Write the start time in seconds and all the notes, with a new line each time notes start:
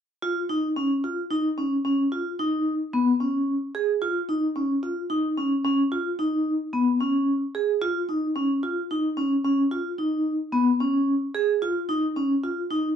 0.22 F4
0.49 D#4
0.76 C#4
1.04 F4
1.31 D#4
1.58 C#4
1.85 C#4
2.12 F4
2.39 D#4
2.93 B3
3.20 C#4
3.75 G#4
4.02 F4
4.29 D#4
4.56 C#4
4.83 F4
5.10 D#4
5.37 C#4
5.65 C#4
5.92 F4
6.19 D#4
6.73 B3
7.00 C#4
7.55 G#4
7.82 F4
8.09 D#4
8.36 C#4
8.63 F4
8.91 D#4
9.17 C#4
9.45 C#4
9.71 F4
9.98 D#4
10.53 B3
10.80 C#4
11.35 G#4
11.62 F4
11.89 D#4
12.16 C#4
12.43 F4
12.71 D#4